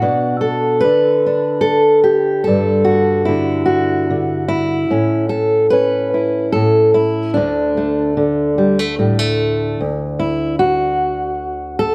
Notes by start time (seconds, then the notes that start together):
Already playing: F#4
0.02 B2 D4
0.41 A4
0.81 D3 B4
1.26 D4
1.61 A4
2.04 G4
2.44 G2 D3 A4
2.49 G3
2.85 F#4
3.25 D3 E4
3.66 F#4
4.10 D3
4.48 E4
4.90 A2 C#4
5.29 A4
5.70 C#4 B4
6.14 E4
6.52 A2 A4
6.94 E4
7.34 D2 D3 A3 D4
7.77 A3
8.17 D3
8.58 G3
8.79 A3
8.99 A2 G3
9.19 A3
9.80 D2
10.19 E4
10.59 F#4
11.79 A4